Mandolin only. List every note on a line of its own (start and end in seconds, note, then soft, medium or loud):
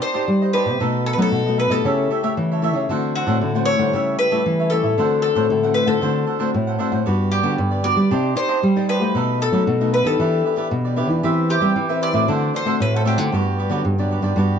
0.02 0.53 C5 medium
0.53 1.06 B4 medium
1.06 1.13 A4 medium
1.13 1.21 B4 medium
1.22 1.57 A4 medium
1.60 1.71 B4 medium
1.71 2.20 A4 medium
3.16 3.69 F#4 medium
3.65 4.18 C#5 medium
4.19 4.73 B4 medium
4.70 5.21 A4 medium
5.22 5.77 A4 medium
5.74 5.87 B4 medium
5.87 6.37 A4 medium
7.32 7.86 G4 medium
7.84 8.33 D5 medium
8.37 8.85 C5 medium
8.89 9.38 B4 medium
9.42 9.90 A4 medium
9.94 10.06 B4 medium
10.07 10.55 A4 medium
11.50 11.99 G4 medium
12.03 12.56 D5 medium
12.56 12.80 C5 medium
12.82 12.93 B4 medium
12.96 13.01 A4 medium
13.07 14.59 G4 medium